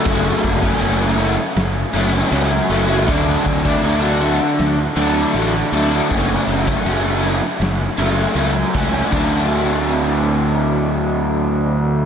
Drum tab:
CC |----------------|----------------|----------------|x---------------|
RD |x-x-x-x-x-x-x-x-|x-x-x-x-x-x-x-x-|x-x-x-x-x-x-x-x-|----------------|
SD |--------o-------|--------o-------|--------o-------|----------------|
BD |o-oo------------|o-oo------------|o--o----------o-|o---------------|